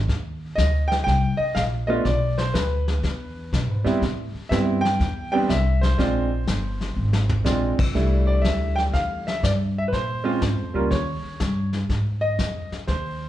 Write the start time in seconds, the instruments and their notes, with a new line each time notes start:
0.08 upright bass D#2, brush sweep, kick, snare
0.56 upright bass D2, grand piano D#5, kick, snare, hi-hat pedal
0.88 grand piano G5, snare
1.04 upright bass C2, grand piano G5, brush sweep, kick, snare
1.37 grand piano D#5, muted upright bass stroke
1.55 upright bass A#1, grand piano F5, kick, snare, hi-hat pedal
1.87 grand piano A3 B3 D4 F4 D#5
2.05 upright bass B1, grand piano D5, brush sweep, kick, snare
2.38 grand piano C5, snare
2.54 upright bass D2, grand piano B4, kick, snare, hi-hat pedal
2.88 snare
3.03 upright bass E2, brush sweep, kick, snare
3.53 upright bass B2, kick, snare, hi-hat pedal
3.68 upright bass G#2
3.84 upright bass E2, grand piano G3 B3 C4 E4, snare
4.02 upright bass A2, brush sweep, kick, snare
4.34 muted upright bass stroke
4.49 upright bass G2, grand piano G3 B3 C4 E4 E5, kick, snare, hi-hat pedal
4.81 grand piano G5, snare
5.00 upright bass E2, brush sweep, kick, snare
5.32 grand piano G3 B3 C4 D4 G5
5.49 upright bass C2, grand piano E5, kick, snare, hi-hat pedal
5.81 grand piano C5, snare
5.98 upright bass A#1, grand piano G#3 C4 D4 F4, brush sweep, kick, snare
6.47 upright bass G1, kick, snare, hi-hat pedal
6.81 snare
6.96 upright bass G#1
7.13 snare
7.29 floor tom
7.44 upright bass A#1, grand piano G#3 C4 D4 F4, snare, hi-hat pedal
7.79 muted upright bass stroke, kick, crash
7.94 upright bass C2, grand piano G3 A3 D4 E4, brush sweep, kick, snare
8.27 grand piano D5
8.42 upright bass D2, grand piano E5, kick, snare, hi-hat pedal
8.76 grand piano G5, snare
8.94 upright bass E2, grand piano F5, brush sweep, kick, snare
9.27 grand piano E5, snare
9.43 upright bass G2, grand piano D5, kick, snare, hi-hat pedal
9.78 grand piano E5
9.88 grand piano B4
9.92 upright bass A#2, grand piano C5, brush sweep, kick, snare
10.24 grand piano G#3 C4 C#4 F4
10.42 upright bass G#2, kick, snare, hi-hat pedal
10.57 upright bass F2
10.74 upright bass C#2, grand piano G3 A#3 C#4 F4 A#4
10.91 upright bass D#2, grand piano C#5, brush sweep, kick, snare
11.23 muted upright bass stroke
11.40 upright bass G2, kick, snare, hi-hat pedal
11.73 snare
11.89 upright bass G#2, brush sweep, kick, snare
12.21 grand piano D#5
12.39 upright bass F2, kick, snare, hi-hat pedal
12.71 muted upright bass stroke, snare
12.87 upright bass D#2, grand piano C5, brush sweep, kick, snare